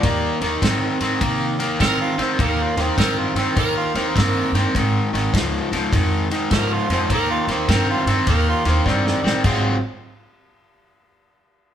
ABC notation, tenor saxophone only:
X:1
M:4/4
L:1/8
Q:"Swing" 1/4=102
K:Ab
V:1 name="Tenor saxophone"
G, z4 z (3B F C | (3B F C (3B F C (3B F C B,2 | z6 (3B F C | (3B F C (3B F C (3B F C G,2 |
A, z6 z |]